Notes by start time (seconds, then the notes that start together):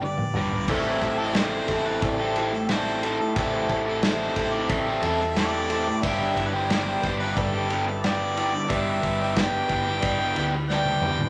Already playing: G1
0.00 G2 D3 G3 D4 G4 B4, high tom
0.04 D5
0.18 mid tom
0.34 G#1 G2 D3 D4 G4 B4, mid tom
0.38 G3
0.51 floor tom
0.68 A1 A2 E3 G3 C4 E4 G4 A4 C5 E5 A5, kick, crash
1.01 A1 G3 C4 E4 A4, kick, snare, ride
1.18 C4 E4 A4 C5
1.33 A2 E3 G3 C4 E4 A4, snare, ride
1.37 C4 E4 A4
1.67 A1 E3 G3 C4 E4 A4, kick, ride
1.72 E4 A4
1.86 C4 E4 A4 B4
2.02 A1 A2 E3 G3 C4 E4 A4, kick, ride
2.19 C4 E4 A4
2.35 E3 C4 E4 A4, ride
2.40 G3 C4
2.53 A4, muted overdriven electric guitar stroke, snare
2.69 A2 E3 G3 C4 E4 C5, snare, ride
2.73 A4
2.87 snare
3.02 E3 G3 C4 E4 A4, ride
3.20 A4, muted overdriven electric guitar stroke
3.36 A1 A2 E3 G3 C4 E4 A4, kick, ride
3.40 E4 A4
3.69 A1 G3 C4 E4 A4, kick, ride
3.86 C4 E4 A4
4.02 A2 E3 G3 C4 E4 C5, snare, ride
4.06 E4 A4
4.36 A1 E3 G3 C4 E4 A4, kick, ride
4.52 E4 A4 D5
4.56 C4
4.68 A1 A2 E3 G3 C4 E4 A4 E5, kick, ride
4.87 C4 E4 A4
5.02 E2 E3 G3 C4 E4 A4, ride
5.07 A4
5.20 muted overdriven electric guitar stroke, snare
5.35 A2 E3 G3 C4 E4 A4 D5, snare, ride
5.39 E4 A4
5.68 E3 G3 C4 E4 A4, ride
5.72 C4 E4 A4
5.89 muted overdriven electric guitar stroke
6.01 G1 G2 D3 G3 D4 E4 B4 E5, kick, crash
6.05 G3 B3 D4 G4 D5 B5
6.34 G1 D4 E4 B4, kick, ride
6.47 B4
6.53 G3 B3 D4 G4 C5
6.67 G2 D3 G3 D4 E4, snare, ride
6.71 G3 B3 D4 G4
7.02 G1 G3 B3 D4 E4 B4, kick, ride
7.06 D4 G4
7.19 B3 D4 G4 B4
7.24 G3
7.34 G1 G3 D4 E4 A4 B4, kick, ride
7.54 G3 B3 D4 G4
7.69 G3 B3 D4 E4 B4, ride
7.74 D4 G4
7.88 A4, muted overdriven electric guitar stroke
8.03 G2 D3 G3 D4 E4 B4 D5, snare, ride
8.07 B3 D4 G4
8.35 G3 D4 E4 B4, ride
8.39 B3 D4 G4
8.54 muted overdriven electric guitar stroke
8.67 G1 G2 D3 G3 B3 D4 E4 B4 E5, kick, ride
8.71 D4 G4
9.01 G1 D4 E4 B4, kick, ride
9.20 G3 B3 D4 G4
9.34 G2 D3 G3 D4 E4 B4 G5, kick, snare, ride
9.38 B3 D4 G4
9.67 G1 G3 D4 E4 B4, kick, ride
9.72 B3 D4 G4
9.87 G3 B3 D4 G4
9.99 G3 D4 E4 B4, ride
10.03 G1, kick
10.20 G3 B3 D4 G4
10.33 D2 G3 D4 E4 B4, ride
10.39 B3 D4 G4
10.55 muted overdriven electric guitar stroke
10.68 G2 D3 G3 D4 E4 B4 G5, snare
10.73 G3 B3 D4 G4
10.86 high tom
11.02 G3 B3 E4 B4, mid tom
11.06 D4 G4
11.19 muted overdriven electric guitar stroke, floor tom